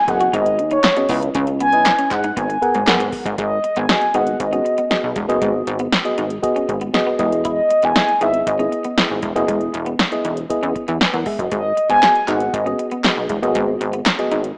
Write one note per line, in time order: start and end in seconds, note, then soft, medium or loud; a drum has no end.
0.00 0.11 G#5 loud
0.07 0.29 F#1 medium
0.07 0.66 B3 medium
0.07 0.66 F#4 medium
0.07 0.66 G#4 medium
0.07 0.66 D#5 medium
0.07 0.34 F#5 loud
0.07 muted clean electric guitar stroke soft
0.07 kick loud
0.07 closed hi-hat medium
0.20 0.31 F#4 medium
0.20 closed hi-hat medium
0.33 0.60 G#1 loud
0.33 0.43 D#4 medium
0.33 0.70 D#5 loud
0.33 kick loud
0.33 closed hi-hat medium
0.46 closed hi-hat soft
0.59 0.79 D#2 medium
0.59 muted clean electric guitar stroke soft
0.59 closed hi-hat medium
0.71 0.81 D#4 medium
0.71 1.07 C#5 medium
0.71 closed hi-hat medium
0.84 muted clean electric guitar stroke soft
0.84 snare loud
0.84 clap medium
0.84 closed hi-hat medium
0.96 1.05 B3 medium
0.96 1.07 C#4 medium
0.96 1.05 F#4 medium
0.96 1.05 G#4 medium
0.96 1.05 D#5 medium
0.96 closed hi-hat soft
1.09 1.30 C#2 loud
1.09 1.20 B3 medium
1.09 1.60 C#4 medium
1.09 1.60 E4 medium
1.09 1.60 B4 medium
1.09 1.61 D#5 medium
1.09 kick medium
1.09 open hi-hat medium
1.22 closed hi-hat medium
1.35 1.75 C#2 loud
1.35 1.45 C#4 medium
1.35 kick loud
1.35 closed hi-hat medium
1.47 muted clean electric guitar stroke soft
1.47 closed hi-hat soft
1.60 1.71 B3 medium
1.60 2.08 G#5 loud
1.60 closed hi-hat medium
1.73 1.94 B1 medium
1.73 2.31 C#4 medium
1.73 2.31 E4 medium
1.73 2.31 B4 medium
1.73 2.31 D#5 medium
1.73 closed hi-hat medium
1.86 snare loud
1.86 clap loud
1.86 closed hi-hat medium
1.99 2.09 C#4 medium
1.99 closed hi-hat medium
2.11 2.32 G#2 medium
2.11 2.35 F#5 loud
2.11 muted clean electric guitar stroke soft
2.11 kick medium
2.11 clap medium
2.11 closed hi-hat medium
2.24 2.34 D#4 medium
2.24 closed hi-hat soft
2.37 2.57 G#1 loud
2.37 2.47 B3 medium
2.37 3.09 G#5 loud
2.37 kick loud
2.37 closed hi-hat loud
2.50 muted clean electric guitar stroke soft
2.50 closed hi-hat soft
2.62 2.78 B3 medium
2.62 2.79 G#4 medium
2.62 2.79 A#4 medium
2.62 2.79 F#5 medium
2.62 closed hi-hat medium
2.74 2.85 G#1 medium
2.74 2.85 G#3 medium
2.74 closed hi-hat soft
2.87 2.98 F#1 medium
2.87 2.98 F#3 medium
2.87 3.28 B3 medium
2.87 3.29 G#4 medium
2.87 3.29 A#4 medium
2.87 3.29 F#5 medium
2.87 snare loud
2.87 clap medium
2.87 closed hi-hat medium
3.00 3.10 G#1 medium
3.00 closed hi-hat medium
3.12 muted clean electric guitar stroke soft
3.12 kick medium
3.12 open hi-hat medium
3.25 3.36 G#1 medium
3.25 3.36 G#3 medium
3.25 kick medium
3.25 closed hi-hat medium
3.38 3.59 G#1 loud
3.38 3.48 G#3 medium
3.38 3.79 D#5 loud
3.38 kick loud
3.38 closed hi-hat medium
3.64 muted clean electric guitar stroke soft
3.64 closed hi-hat medium
3.76 3.87 G#1 loud
3.76 3.87 B3 medium
3.76 4.17 G#5 loud
3.76 closed hi-hat medium
3.89 4.05 B3 medium
3.89 4.06 F#4 medium
3.89 4.06 G#4 medium
3.89 4.06 D#5 medium
3.89 snare loud
3.89 closed hi-hat medium
4.02 closed hi-hat soft
4.14 4.36 G#1 medium
4.14 4.39 B3 medium
4.14 4.25 D#4 medium
4.14 4.39 F#4 medium
4.14 4.39 G#4 medium
4.14 4.39 D#5 medium
4.14 4.42 F#5 loud
4.14 closed hi-hat medium
4.27 closed hi-hat soft
4.40 4.61 G#1 medium
4.40 5.17 D#5 medium
4.40 kick medium
4.40 closed hi-hat medium
4.52 4.77 B3 medium
4.52 4.63 C#4 medium
4.52 4.77 F#4 medium
4.52 4.78 G#4 medium
4.52 4.78 D#5 medium
4.52 closed hi-hat soft
4.65 muted clean electric guitar stroke soft
4.65 closed hi-hat medium
4.78 4.88 B3 medium
4.78 closed hi-hat soft
4.90 5.15 B3 medium
4.90 5.15 F#4 medium
4.90 5.16 G#4 medium
4.90 5.16 D#5 medium
4.90 snare loud
4.90 closed hi-hat medium
5.04 5.14 B1 medium
5.16 5.26 E1 medium
5.16 5.26 G#3 medium
5.16 kick loud
5.16 closed hi-hat medium
5.28 5.39 F#1 medium
5.28 5.78 B3 loud
5.28 5.79 F#4 medium
5.28 5.79 G#4 medium
5.28 5.79 D#5 loud
5.28 closed hi-hat medium
5.42 5.62 G#1 medium
5.42 5.52 G#3 medium
5.42 kick loud
5.42 closed hi-hat medium
5.67 5.88 G#1 loud
5.67 muted clean electric guitar stroke soft
5.67 closed hi-hat medium
5.79 5.90 B3 medium
5.79 closed hi-hat medium
5.92 snare loud
5.92 closed hi-hat medium
6.05 6.30 B3 medium
6.05 6.30 F#4 medium
6.05 6.30 G#4 medium
6.05 6.30 D#5 medium
6.05 closed hi-hat soft
6.18 6.39 G#1 medium
6.18 6.28 D#4 medium
6.18 closed hi-hat medium
6.30 closed hi-hat medium
6.42 6.76 B3 medium
6.42 6.76 F#4 medium
6.42 6.76 G#4 medium
6.42 6.77 D#5 loud
6.42 kick loud
6.42 closed hi-hat medium
6.56 6.66 C#4 medium
6.56 closed hi-hat soft
6.69 6.90 G#1 medium
6.69 muted clean electric guitar stroke soft
6.69 kick medium
6.69 closed hi-hat medium
6.81 6.92 B3 medium
6.81 closed hi-hat soft
6.94 7.18 B3 medium
6.94 7.19 F#4 medium
6.94 7.20 G#4 medium
6.94 7.18 D#5 loud
6.94 muted clean electric guitar stroke soft
6.94 snare loud
6.94 closed hi-hat medium
7.07 7.17 B3 medium
7.19 7.61 E1 loud
7.19 7.30 G#3 medium
7.19 7.80 B3 loud
7.19 7.80 E4 medium
7.19 7.26 G4 medium
7.19 7.81 D#5 loud
7.19 kick medium
7.19 closed hi-hat medium
7.25 7.83 G#4 medium
7.32 closed hi-hat medium
7.45 7.55 E4 medium
7.45 7.86 D#5 loud
7.45 kick loud
7.45 closed hi-hat medium
7.70 muted clean electric guitar stroke soft
7.70 closed hi-hat medium
7.82 7.94 E1 loud
7.82 7.93 B3 medium
7.82 8.22 G#5 loud
7.82 closed hi-hat medium
7.96 8.12 B3 medium
7.96 8.12 E4 medium
7.96 8.13 G#4 medium
7.96 8.13 D#5 medium
7.96 snare loud
7.96 closed hi-hat medium
8.08 closed hi-hat soft
8.21 8.42 G#1 medium
8.21 8.46 B3 medium
8.21 8.31 D#4 medium
8.21 8.46 E4 medium
8.21 8.46 G#4 medium
8.21 8.46 D#5 medium
8.21 8.49 E5 loud
8.21 closed hi-hat medium
8.34 closed hi-hat soft
8.47 8.67 G#1 loud
8.47 9.23 D#5 medium
8.47 kick loud
8.47 closed hi-hat loud
8.59 8.84 B3 medium
8.59 8.69 C#4 medium
8.59 8.84 E4 medium
8.59 8.84 G#4 medium
8.59 8.85 D#5 medium
8.59 closed hi-hat soft
8.72 muted clean electric guitar stroke soft
8.72 closed hi-hat medium
8.84 8.95 B3 medium
8.84 closed hi-hat medium
8.97 9.22 B3 medium
8.97 9.22 E4 medium
8.97 9.23 G#4 medium
8.97 9.23 D#5 medium
8.97 snare loud
8.97 closed hi-hat medium
9.11 9.21 G#1 medium
9.22 9.33 E1 loud
9.22 9.33 G#3 medium
9.22 kick medium
9.22 closed hi-hat medium
9.35 9.46 F#1 medium
9.35 9.85 B3 loud
9.35 9.85 E4 medium
9.35 9.86 G#4 medium
9.35 9.86 D#5 loud
9.35 closed hi-hat medium
9.48 9.69 E1 medium
9.48 9.58 G#3 medium
9.48 kick loud
9.48 closed hi-hat medium
9.61 closed hi-hat soft
9.74 9.95 E1 loud
9.74 muted clean electric guitar stroke soft
9.74 closed hi-hat medium
9.86 9.97 B3 medium
9.86 closed hi-hat medium
9.99 snare loud
9.99 closed hi-hat medium
10.12 10.37 B3 medium
10.12 10.37 E4 medium
10.12 10.37 G#4 medium
10.12 10.37 D#5 medium
10.12 closed hi-hat soft
10.25 10.45 E1 medium
10.25 10.35 D#4 medium
10.25 closed hi-hat medium
10.37 closed hi-hat medium
10.50 10.83 B3 medium
10.50 10.83 E4 medium
10.50 10.83 G#4 medium
10.50 10.83 D#5 medium
10.50 kick medium
10.50 closed hi-hat medium
10.63 10.73 E2 medium
10.63 10.73 C#4 medium
10.63 closed hi-hat soft
10.76 muted clean electric guitar stroke soft
10.76 kick medium
10.76 closed hi-hat medium
10.88 10.99 E2 loud
10.88 10.98 B3 medium
10.88 closed hi-hat soft
11.01 11.13 B4 medium
11.01 11.13 G#5 medium
11.01 muted clean electric guitar stroke soft
11.01 snare loud
11.01 closed hi-hat medium
11.14 11.24 E2 medium
11.14 11.24 B3 medium
11.14 11.26 A#4 medium
11.14 11.26 F#5 medium
11.14 closed hi-hat soft
11.26 11.36 G#3 medium
11.26 11.39 G#4 medium
11.26 11.38 E5 medium
11.26 kick medium
11.26 open hi-hat medium
11.39 11.49 F#1 medium
11.39 11.64 F#4 medium
11.39 11.63 D#5 medium
11.39 kick medium
11.39 closed hi-hat medium
11.51 11.72 G#1 medium
11.51 11.62 G#3 medium
11.51 11.88 D#5 loud
11.51 kick loud
11.51 closed hi-hat medium
11.77 muted clean electric guitar stroke soft
11.77 closed hi-hat medium
11.90 12.00 G#1 loud
11.90 12.00 B3 medium
11.90 12.30 G#5 loud
11.90 closed hi-hat medium
12.02 12.19 B3 medium
12.02 12.19 F#4 soft
12.02 12.19 G#4 medium
12.02 12.19 D#5 medium
12.02 snare loud
12.02 clap medium
12.02 closed hi-hat medium
12.15 closed hi-hat soft
12.27 12.49 G#1 loud
12.27 12.53 B3 medium
12.27 12.38 D#4 medium
12.27 12.53 F#4 medium
12.27 12.53 G#4 medium
12.27 12.53 D#5 medium
12.27 12.55 F#5 loud
12.27 clap medium
12.27 closed hi-hat medium
12.40 closed hi-hat soft
12.54 12.74 G#1 loud
12.54 13.30 D#5 medium
12.54 kick loud
12.54 closed hi-hat medium
12.66 12.91 B3 medium
12.66 12.76 C#4 medium
12.66 12.91 F#4 medium
12.66 12.91 G#4 medium
12.66 12.91 D#5 medium
12.66 closed hi-hat soft
12.79 muted clean electric guitar stroke soft
12.79 closed hi-hat medium
12.91 13.02 B3 medium
12.91 closed hi-hat soft
13.04 13.29 B3 medium
13.04 13.29 F#4 medium
13.04 13.29 G#4 medium
13.04 13.30 D#5 medium
13.04 snare loud
13.04 clap medium
13.04 closed hi-hat medium
13.17 13.28 B1 medium
13.29 13.40 E1 medium
13.29 13.40 G#3 medium
13.29 kick medium
13.29 closed hi-hat medium
13.42 13.53 F#1 loud
13.42 13.92 B3 loud
13.42 13.92 F#4 medium
13.42 13.92 G#4 medium
13.42 13.92 D#5 medium
13.42 closed hi-hat medium
13.55 13.76 G#1 loud
13.55 13.65 G#3 loud
13.55 kick loud
13.55 closed hi-hat medium
13.81 14.01 G#1 loud
13.81 muted clean electric guitar stroke soft
13.81 closed hi-hat medium
13.93 14.04 B3 medium
13.93 closed hi-hat medium
14.06 snare loud
14.06 clap loud
14.06 closed hi-hat medium
14.18 14.43 B3 medium
14.18 14.44 F#4 medium
14.18 14.44 G#4 medium
14.18 14.44 D#5 medium
14.18 closed hi-hat soft
14.31 14.52 G#1 medium
14.31 14.42 D#4 medium
14.31 closed hi-hat medium
14.44 closed hi-hat soft